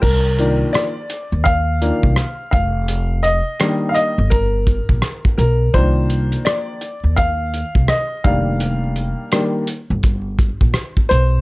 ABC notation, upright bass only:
X:1
M:4/4
L:1/16
Q:"Swing 16ths" 1/4=84
K:Cm
V:1 name="Upright bass" clef=bass
C,,4 z3 E,,4 C,, z2 F,,,2- | F,,,4 z3 G,,,4 B,,, z2 =B,,,2 | C,,4 z3 E,,4 C,, z2 F,,,2- | F,,,4 z3 G,,,4 B,,, z2 =B,,,2 |]